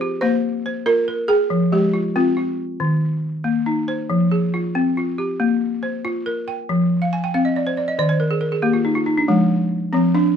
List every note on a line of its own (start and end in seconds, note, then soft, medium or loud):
0.00 0.43 F4 medium
0.00 0.44 G4 medium
0.00 0.20 C5 loud
0.21 0.65 A#3 medium
0.21 0.88 C5 loud
0.66 1.30 C5 medium
0.86 1.29 F4 medium
0.86 1.30 A#4 medium
1.08 1.72 A#4 medium
1.28 1.69 G#4 medium
1.28 1.72 G5 medium
1.50 1.94 F3 medium
1.72 2.37 G#3 medium
1.72 2.17 G4 medium
1.93 2.36 F4 medium
2.16 2.59 C4 medium
2.16 3.41 F4 medium
2.37 3.01 F4 medium
2.80 3.23 D#3 medium
3.44 3.88 A#3 medium
3.66 4.31 D#4 medium
3.88 4.31 C5 medium
4.10 4.53 F3 medium
4.32 4.96 G#4 medium
4.54 4.96 F4 medium
4.75 5.18 C4 medium
4.97 5.61 F4 medium
5.18 5.61 G4 medium
5.40 5.82 A#3 medium
5.83 6.47 C5 medium
6.05 6.47 F4 medium
6.26 6.91 A#4 medium
6.48 6.91 G5 medium
6.69 7.12 F3 medium
7.02 7.22 F5 medium
7.13 7.32 G#5 medium
7.24 7.43 G5 medium
7.34 7.77 C4 medium
7.34 7.54 F5 medium
7.45 7.65 D#5 medium
7.56 7.76 D5 medium
7.67 7.86 C5 medium
7.77 7.97 D5 medium
7.88 8.08 D#5 medium
7.99 8.42 D#3 medium
7.99 8.19 D5 medium
8.09 8.29 C5 medium
8.20 8.40 A#4 medium
8.31 8.51 G#4 medium
8.41 8.61 A#4 medium
8.52 8.72 G#4 medium
8.62 9.06 A#3 medium
8.62 8.83 G4 medium
8.73 8.94 F4 medium
8.85 9.05 D#4 medium
8.95 9.16 F4 medium
9.06 9.27 D#4 medium
9.17 9.38 D4 medium
9.28 9.72 F3 medium
9.28 9.96 G#3 medium
9.93 10.37 F3 medium
9.93 10.16 C4 medium
10.15 10.37 D4 medium